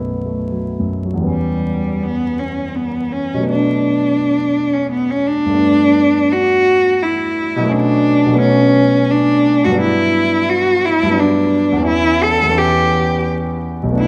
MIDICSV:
0, 0, Header, 1, 3, 480
1, 0, Start_track
1, 0, Tempo, 772201
1, 805, Time_signature, 3, 2, 24, 8
1, 805, Tempo, 733496
1, 1765, Tempo, 716846
1, 3685, Tempo, 694444
1, 8005, Tempo, 705053
1, 9500, End_track
2, 0, Start_track
2, 0, Title_t, "Cello"
2, 0, Program_c, 0, 42
2, 810, Note_on_c, 0, 55, 65
2, 1285, Note_on_c, 0, 59, 77
2, 1294, Note_off_c, 0, 55, 0
2, 1523, Note_on_c, 0, 61, 68
2, 1533, Note_off_c, 0, 59, 0
2, 1758, Note_on_c, 0, 59, 69
2, 1768, Note_off_c, 0, 61, 0
2, 2008, Note_on_c, 0, 61, 82
2, 2018, Note_off_c, 0, 59, 0
2, 2253, Note_off_c, 0, 61, 0
2, 2263, Note_on_c, 0, 62, 82
2, 3084, Note_on_c, 0, 61, 69
2, 3094, Note_off_c, 0, 62, 0
2, 3203, Note_off_c, 0, 61, 0
2, 3208, Note_on_c, 0, 59, 73
2, 3335, Note_on_c, 0, 61, 80
2, 3345, Note_off_c, 0, 59, 0
2, 3444, Note_on_c, 0, 62, 96
2, 3454, Note_off_c, 0, 61, 0
2, 4168, Note_on_c, 0, 66, 102
2, 4178, Note_off_c, 0, 62, 0
2, 4651, Note_on_c, 0, 64, 83
2, 4661, Note_off_c, 0, 66, 0
2, 5133, Note_on_c, 0, 62, 94
2, 5143, Note_off_c, 0, 64, 0
2, 5603, Note_off_c, 0, 62, 0
2, 5607, Note_on_c, 0, 61, 100
2, 6090, Note_on_c, 0, 62, 101
2, 6100, Note_off_c, 0, 61, 0
2, 6461, Note_on_c, 0, 66, 87
2, 6472, Note_off_c, 0, 62, 0
2, 6569, Note_off_c, 0, 66, 0
2, 6573, Note_on_c, 0, 64, 96
2, 7046, Note_on_c, 0, 66, 96
2, 7057, Note_off_c, 0, 64, 0
2, 7295, Note_on_c, 0, 64, 98
2, 7306, Note_off_c, 0, 66, 0
2, 7532, Note_on_c, 0, 62, 83
2, 7542, Note_off_c, 0, 64, 0
2, 7995, Note_off_c, 0, 62, 0
2, 8000, Note_on_c, 0, 64, 97
2, 8248, Note_on_c, 0, 69, 97
2, 8258, Note_off_c, 0, 64, 0
2, 8483, Note_on_c, 0, 67, 89
2, 8493, Note_off_c, 0, 69, 0
2, 8963, Note_off_c, 0, 67, 0
2, 9449, Note_on_c, 0, 64, 89
2, 9500, Note_off_c, 0, 64, 0
2, 9500, End_track
3, 0, Start_track
3, 0, Title_t, "Grand piano"
3, 0, Program_c, 1, 0
3, 0, Control_c, 1, 64, 127
3, 0, Note_on_c, 1, 35, 47
3, 0, Note_on_c, 1, 42, 39
3, 0, Note_on_c, 1, 54, 31
3, 0, Note_on_c, 1, 57, 36
3, 0, Note_on_c, 1, 59, 36
3, 0, Note_on_c, 1, 64, 60
3, 104, Note_off_c, 1, 57, 0
3, 159, Note_on_c, 1, 57, 36
3, 261, Note_off_c, 1, 59, 0
3, 325, Note_off_c, 1, 54, 0
3, 325, Note_on_c, 1, 54, 35
3, 421, Note_off_c, 1, 57, 0
3, 493, Note_off_c, 1, 42, 0
3, 493, Note_on_c, 1, 42, 38
3, 565, Note_off_c, 1, 64, 0
3, 585, Note_off_c, 1, 54, 0
3, 654, Note_on_c, 1, 54, 40
3, 706, Note_on_c, 1, 40, 48
3, 726, Note_on_c, 1, 52, 37
3, 746, Note_off_c, 1, 42, 0
3, 747, Note_on_c, 1, 55, 40
3, 769, Note_on_c, 1, 59, 44
3, 778, Note_off_c, 1, 35, 0
3, 788, Note_on_c, 1, 61, 37
3, 807, Note_off_c, 1, 54, 0
3, 817, Control_c, 1, 64, 0
3, 930, Control_c, 1, 64, 127
3, 2153, Note_on_c, 1, 47, 51
3, 2174, Note_off_c, 1, 40, 0
3, 2174, Note_on_c, 1, 54, 44
3, 2185, Note_off_c, 1, 52, 0
3, 2194, Note_on_c, 1, 57, 43
3, 2196, Note_off_c, 1, 55, 0
3, 2202, Note_off_c, 1, 59, 0
3, 2212, Note_on_c, 1, 59, 47
3, 2218, Note_off_c, 1, 61, 0
3, 2233, Note_on_c, 1, 62, 44
3, 2267, Control_c, 1, 64, 0
3, 2379, Control_c, 1, 64, 127
3, 3572, Note_on_c, 1, 43, 57
3, 3582, Note_off_c, 1, 57, 0
3, 3592, Note_on_c, 1, 57, 47
3, 3607, Note_off_c, 1, 47, 0
3, 3608, Note_off_c, 1, 59, 0
3, 3618, Note_off_c, 1, 54, 0
3, 3618, Note_on_c, 1, 59, 46
3, 3627, Note_off_c, 1, 62, 0
3, 3637, Note_on_c, 1, 62, 48
3, 3698, Control_c, 1, 64, 0
3, 3800, Control_c, 1, 64, 127
3, 5021, Note_on_c, 1, 47, 71
3, 5044, Note_off_c, 1, 43, 0
3, 5045, Note_on_c, 1, 54, 55
3, 5055, Note_off_c, 1, 57, 0
3, 5065, Note_on_c, 1, 57, 51
3, 5068, Note_off_c, 1, 59, 0
3, 5078, Note_off_c, 1, 62, 0
3, 5088, Note_on_c, 1, 59, 55
3, 5108, Note_on_c, 1, 61, 53
3, 5143, Control_c, 1, 64, 0
3, 5269, Control_c, 1, 64, 127
3, 5492, Note_off_c, 1, 47, 0
3, 5502, Note_on_c, 1, 47, 63
3, 5511, Note_off_c, 1, 54, 0
3, 5521, Note_on_c, 1, 54, 59
3, 5532, Note_off_c, 1, 57, 0
3, 5543, Note_on_c, 1, 57, 59
3, 5556, Note_off_c, 1, 59, 0
3, 5566, Note_on_c, 1, 59, 56
3, 5577, Note_off_c, 1, 61, 0
3, 5588, Note_on_c, 1, 61, 60
3, 6468, Note_on_c, 1, 43, 67
3, 6476, Note_off_c, 1, 54, 0
3, 6487, Note_on_c, 1, 54, 58
3, 6498, Note_off_c, 1, 47, 0
3, 6501, Note_off_c, 1, 59, 0
3, 6512, Note_on_c, 1, 59, 52
3, 6519, Note_off_c, 1, 57, 0
3, 6533, Note_on_c, 1, 62, 57
3, 6541, Note_off_c, 1, 61, 0
3, 6593, Control_c, 1, 64, 0
3, 6722, Control_c, 1, 64, 127
3, 7407, Note_off_c, 1, 43, 0
3, 7417, Note_on_c, 1, 43, 64
3, 7430, Note_off_c, 1, 54, 0
3, 7440, Note_on_c, 1, 54, 55
3, 7454, Note_off_c, 1, 59, 0
3, 7464, Note_on_c, 1, 59, 51
3, 7474, Note_off_c, 1, 62, 0
3, 7484, Note_on_c, 1, 62, 51
3, 7896, Note_on_c, 1, 40, 63
3, 7918, Note_on_c, 1, 52, 55
3, 7930, Note_off_c, 1, 59, 0
3, 7934, Note_off_c, 1, 43, 0
3, 7941, Note_on_c, 1, 59, 49
3, 7946, Note_off_c, 1, 54, 0
3, 7960, Note_on_c, 1, 61, 53
3, 7968, Note_off_c, 1, 62, 0
3, 7980, Note_on_c, 1, 64, 57
3, 8014, Control_c, 1, 64, 0
3, 8146, Control_c, 1, 64, 127
3, 8365, Note_off_c, 1, 40, 0
3, 8376, Note_on_c, 1, 40, 65
3, 8386, Note_off_c, 1, 52, 0
3, 8396, Note_on_c, 1, 52, 55
3, 8408, Note_off_c, 1, 59, 0
3, 8419, Note_on_c, 1, 59, 53
3, 8426, Note_off_c, 1, 61, 0
3, 8436, Note_on_c, 1, 61, 57
3, 8448, Note_off_c, 1, 64, 0
3, 8459, Note_on_c, 1, 64, 49
3, 9332, Note_on_c, 1, 35, 61
3, 9352, Note_on_c, 1, 54, 43
3, 9362, Note_off_c, 1, 40, 0
3, 9372, Note_off_c, 1, 52, 0
3, 9374, Note_on_c, 1, 57, 52
3, 9383, Note_off_c, 1, 59, 0
3, 9392, Note_off_c, 1, 61, 0
3, 9396, Note_on_c, 1, 59, 50
3, 9403, Note_off_c, 1, 64, 0
3, 9414, Note_on_c, 1, 62, 52
3, 9456, Control_c, 1, 64, 0
3, 9500, Note_off_c, 1, 35, 0
3, 9500, Note_off_c, 1, 54, 0
3, 9500, Note_off_c, 1, 57, 0
3, 9500, Note_off_c, 1, 59, 0
3, 9500, Note_off_c, 1, 62, 0
3, 9500, End_track
0, 0, End_of_file